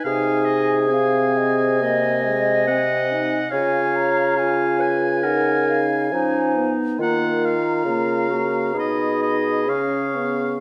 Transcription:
<<
  \new Staff \with { instrumentName = "Flute" } { \time 4/4 \key cis \mixolydian \tempo 4 = 69 gis''4 eis''8 dis''4. gis''4 | gis''8 ais''8 gis''4 fis''8 eis''8 gis''8 r8 | ais''2 b''4 cis'''4 | }
  \new Staff \with { instrumentName = "Oboe" } { \time 4/4 \key cis \mixolydian eis''8 dis''8 gis''2 fis''4 | eis''4 eis''8 gis''2 r8 | fis''8 eis''4. dis''8 dis''8 eis''4 | }
  \new Staff \with { instrumentName = "Clarinet" } { \time 4/4 \key cis \mixolydian gis'2 dis''2 | cis''4. b'8 ais'8 r8 dis'4 | eis'4. fis'8 gis'2 | }
  \new Staff \with { instrumentName = "French horn" } { \time 4/4 \key cis \mixolydian dis'4 bis4 ais8 gis8 bis8 dis'8 | eis'4 eis'4 dis'4 cis'8 b8 | ais8 r8 ais8 ais8 dis'4 cis'8 b8 | }
  \new Staff \with { instrumentName = "Bassoon" } { \clef bass \time 4/4 \key cis \mixolydian bis,1 | cis2. eis8 r8 | dis4 cis4 b,4 cis4 | }
>>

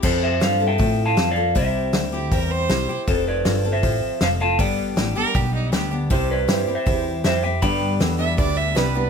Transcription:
<<
  \new Staff \with { instrumentName = "Clean electric guitar" } { \time 4/4 \key c \major \tempo 4 = 158 <a' c''>8 <c'' e''>8 \tuplet 3/2 { <c'' f''>4 <e'' g''>8~ <e'' g''>4 <f'' a''>8~ <f'' a''>8 <d'' f''>4 } | <c'' e''>2. r4 | <a' c''>8 <b' d''>8~ \tuplet 3/2 { <b' d''>4 <c'' e''>8~ } <c'' e''>4 <c'' f''>8 <f'' a''>8 | <d'' g''>2 r2 |
<g' c''>8 <b' d''>8~ \tuplet 3/2 { <b' d''>4 <c'' e''>8~ } <c'' e''>4 <c'' e''>8 <e'' g''>8 | <g'' b''>2 r2 | }
  \new Staff \with { instrumentName = "Fiddle" } { \time 4/4 \key c \major r1 | r4. g'8 bes'8 c''4~ c''16 r16 | r1 | r4. bes'8 g'8 ees'8 g'8 r8 |
r1 | r4. e''8 d''8 e''8 b'8. r16 | }
  \new Staff \with { instrumentName = "Grand piano" } { \time 4/4 \key c \major r1 | r1 | r1 | r1 |
<c' e' g' c''>8 r8 <c' e' g' c''>8 r8 <c' e' g' c''>8 r8 <c' e' g' c''>8 r8 | <b d' g' b'>8 r8 <b d' g' a'>8 r8 <b d' g' b'>8 r8 <b d' g' b'>8 r8 | }
  \new Staff \with { instrumentName = "Steel-string acoustic guitar" } { \time 4/4 \key c \major <f c' f' a'>4 <f c' f' a'>8 <c' f' a'>8 <f c' f' a'>4 <f c' f' a'>8 <c' f' a'>8 | <c g c' e' g'>4 <g c' e' g'>8 <c' e' g'>8 <g c' e' g'>4 <g c' e' g'>8 <c' e' g'>8 | <f c' f' a'>4 <f c' f' a'>8 <c' f' a'>8 <f c' f' a'>4 <f c' f' a'>8 <c' f' a'>8 | <g, d g b d' g'>4 <g b d' g'>8 <g b d' g'>8 <g b d' g'>4 <g b d' g'>8 <g b d' g'>8 |
<c g c' e' g'>4 <g c' e' g'>8 <c' e' g'>8 <g c' e' g'>4 <g c' e' g'>8 <c' e' g'>8 | <g, d g b d' g'>4 <g b d' g'>8 <g b d' g'>8 <g b d' g'>4 <g b d' g'>8 <g b d' g'>8 | }
  \new Staff \with { instrumentName = "Analog synth bass" } { \clef bass \time 4/4 \key c \major f,4 g,4 a,4 f,4 | c,4 d,4 e,4 c,8 c,8 | f,,4 g,,4 a,,8 a,,8 f,,4 | g,,4 a,,8 a,,8 b,,4 d,4 |
c,4 g,8 g,8 e,4 f,4 | g,4 e,4 d,4 c,4 | }
  \new DrumStaff \with { instrumentName = "Drums" } \drummode { \time 4/4 <cymc bd>4 <hho sn>4 <hho bd>4 <hho sn>4 | <hho bd>4 <hho sn>4 <hho bd>4 <hho sn>4 | <hho bd>4 <hho sn>4 <hho bd>4 <hho sn>4 | <hho bd>4 <hho sn>4 <hho bd>4 <hho sn>4 |
<hho bd>4 <hho sn>4 <hho bd>4 <hho sn>4 | <hho bd>4 <hho sn>4 <hho bd>4 <hho sn>4 | }
>>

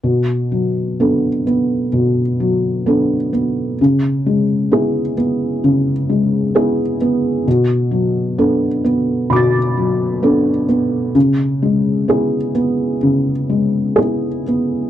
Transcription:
<<
  \new Staff \with { instrumentName = "Felt piano" } { \time 4/4 \key b \dorian \tempo 4 = 65 r1 | r1 | r2 <b'' d''' a'''>2 | r2. gis'4 | }
  \new Staff \with { instrumentName = "Felt piano" } { \time 4/4 \key b \dorian b,8 fis8 <b d' a'>8 b8 b,8 fis8 <b d' a'>8 b8 | cis8 gis8 <b e' gis'>8 b8 cis8 gis8 <b e' gis'>8 b8 | b,8 fis8 <b d' a'>8 b8 b,8 fis8 <b d' a'>8 b8 | cis8 gis8 <b e' gis'>8 b8 cis8 gis8 <b e' gis'>8 b8 | }
>>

